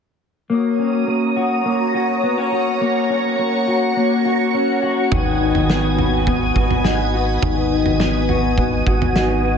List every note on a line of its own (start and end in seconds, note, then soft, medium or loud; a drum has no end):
0.49 1.06 A#3 medium
0.49 9.58 F#4 medium
0.49 5.07 C#5 medium
0.49 5.07 A#5 medium
0.49 2.78 D#6 medium
0.79 2.23 C#4 soft
1.07 1.64 A#3 medium
1.36 1.94 F#4 medium
1.65 2.80 A#3 medium
1.94 2.51 F#4 soft
2.23 2.38 B3 medium
2.38 3.09 C#4 soft
2.52 3.67 F#4 medium
2.81 3.38 A#3 medium
2.81 5.09 C#6 medium
3.10 4.53 C#4 soft
3.39 3.95 A#3 soft
3.68 4.25 F#4 medium
3.96 5.18 A#3 medium
4.25 4.82 F#4 medium
4.54 5.18 C#4 medium
4.83 5.98 F#4 medium
5.11 5.53 G#1 medium
5.11 7.42 D#3 medium
5.11 9.58 B4 medium
5.11 9.58 G#5 medium
5.11 9.58 D#6 medium
5.11 kick medium
5.11 floor tom loud
5.41 6.84 D#4 soft
5.55 6.52 G#1 medium
5.55 floor tom medium
5.70 6.26 B3 medium
5.70 snare medium
5.98 6.56 F#4 medium
5.98 floor tom medium
6.27 7.99 B3 medium
6.27 kick medium
6.27 floor tom medium
6.56 7.38 G#1 loud
6.56 7.13 F#4 medium
6.56 kick medium
6.71 floor tom medium
6.85 7.71 D#4 soft
6.85 snare medium
7.14 8.29 F#4 medium
7.42 7.84 G#1 medium
7.42 9.58 D#3 medium
7.42 kick medium
7.42 floor tom loud
7.72 9.16 D#4 medium
7.85 8.83 G#1 medium
7.85 floor tom medium
8.00 8.57 B3 medium
8.00 snare medium
8.29 8.87 F#4 medium
8.29 floor tom medium
8.58 9.58 B3 medium
8.58 kick medium
8.58 floor tom medium
8.87 9.58 G#1 loud
8.87 9.44 F#4 medium
8.87 kick medium
9.02 floor tom medium
9.16 9.58 D#4 medium
9.16 snare medium
9.45 9.58 F#4 medium